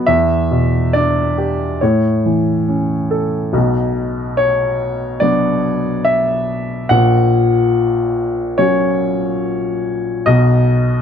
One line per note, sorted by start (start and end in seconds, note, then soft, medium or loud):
0.06 1.77 E2 medium
0.06 0.93 E5 medium
0.51 1.20 B2 soft
0.93 1.63 D4 medium
0.93 1.80 D5 medium
1.38 1.81 G4 soft
1.81 3.51 A2 medium
1.81 2.68 C#5 medium
2.26 2.94 E3 soft
2.69 3.38 C#4 soft
3.11 3.54 A4 soft
3.53 6.86 B1 medium
3.53 6.87 B2 medium
4.37 5.22 C#5 medium
5.20 6.86 F#3 soft
5.20 6.87 B3 soft
5.20 6.87 D4 medium
5.20 6.05 D5 medium
6.05 6.90 E5 medium
6.89 10.23 A#1 medium
6.89 10.23 A#2 medium
6.89 8.59 F#5 medium
8.58 10.23 F#3 soft
8.58 10.23 C#4 soft
8.58 10.23 F#4 soft
8.58 10.26 C#5 medium
10.26 11.02 B1 medium
10.26 11.02 B2 medium
10.26 11.02 D#5 medium